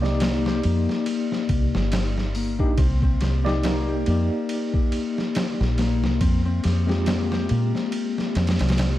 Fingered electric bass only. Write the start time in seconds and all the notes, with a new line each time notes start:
Already playing: C2
0.65 F2
1.50 C2
1.75 G1
2.78 C2
3.22 C2
4.07 F2
5.61 A#1
6.04 C2
6.21 F2
6.65 F2
7.51 A#2
8.36 F2
8.60 C2